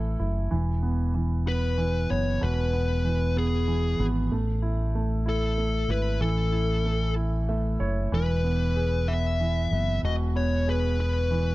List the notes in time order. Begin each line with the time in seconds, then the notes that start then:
Already playing: A1 E3 A3 E4
0.20 F#1 E4
0.51 E1 E3
0.83 B3
1.14 E3
1.46 B3 B4
1.78 E3
2.10 F#1 B3 C#5
2.41 E1 B2 B4
2.73 B3
3.05 E3
3.36 B3 G#4
3.68 E3
3.99 G#1 B3
4.31 A1 A3
4.62 E4
4.95 A3
5.26 E4 A4
5.58 A3
5.88 G#1 E4 B4
6.21 A1 E3 A4
6.52 E4
6.85 A3
7.16 E4
7.49 A3 E5
7.80 F#1 E4 C#5
8.12 E1 E3 B4
8.44 B3
8.76 G#4
9.08 B3 E5
9.40 E3
9.71 F#1 B3
10.03 E1 B2 D#5
10.35 B3 C#5
10.67 G#4 B4
10.99 B3 B4
11.31 E3